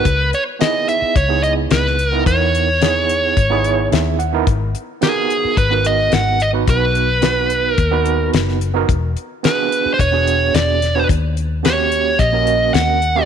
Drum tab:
HH |x-x-x-x-x-x-x-x-|x-x-x-x-x-x-x-x-|x-x-x-x-x-x-x-x-|x-x-x-x-x-x-x-x-|
SD |----o-------oo--|----o-------o---|----o-------o---|----o-------oo--|
BD |o-------o-------|o-------o-------|o-------o-------|o-------o-------|

HH |x-x-x-x-x-x-x-x-|x-x-x-x-x-x-x-x-|
SD |----o-------o-o-|----o-------o---|
BD |o-------o-------|o-------o-------|